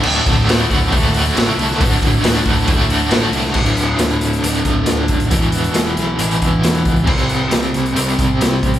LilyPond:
<<
  \new Staff \with { instrumentName = "Overdriven electric guitar" } { \clef bass \time 4/4 \key d \mixolydian \tempo 4 = 136 <d, a, d a fis'>4 <d, a, d a fis'>8 <d a fis'>8 <a, d a fis'>8 <d a fis'>8 <a, d a fis'>4 | <d, a, d a fis'>4 <d, a, d a fis'>8 <d a fis'>8 <a, d a fis'>8 <d a fis'>8 <a, d a fis'>4 | \key e \dorian <d, a, d>2 <d, a, d>2 | <e, b, e>2 <e, b, e>2 |
<c g c'>2 <c g c'>2 | }
  \new Staff \with { instrumentName = "Fingered electric bass" } { \clef bass \time 4/4 \key d \mixolydian d,,8 d,,8 d,,8 d,,8 d,8 d,8 a,,8 c,8 | d,,8 d,,8 d,,8 d,,8 d,8 d,8 a,,8 c,8 | \key e \dorian d,,4 d,,8 d,,8 d,,8 d,,8 d,8 ees,,8 | e,,4 e,,8 b,,8 a,,8 e,,8 e,,8 cis,8 |
c,4 c,8 c,8 c,8 c,8 c,8 a,,8 | }
  \new DrumStaff \with { instrumentName = "Drums" } \drummode { \time 4/4 cymc8 <hho bd>8 <hho sn>8 <hho bd>8 <hho bd>16 sn16 hho8 <hho sn>8 hho16 sn16 | <hho bd>8 <hho bd>8 <hho sn>8 <hho bd sn>8 <hho bd>8 hho8 <hho sn>8 hho16 sn16 | <cymc bd>16 hh16 hh8 <hh sn>16 hh16 hh16 hh16 hh16 hh16 <hh bd sn>8 <hh sn>16 sn16 <hh bd>16 hh16 | <hh bd>16 hh16 hh16 hh16 <hh sn>16 hh16 <hh sn>8 hh16 hh16 <hh bd>8 <hh sn>16 <hh sn>16 <hh bd>16 hh16 |
<cymc bd>16 hh16 hh8 <hh sn>16 hh16 <hh sn>16 hh16 hh16 hh16 <hh bd>8 <hh sn>16 sn16 <hh bd>16 hh16 | }
>>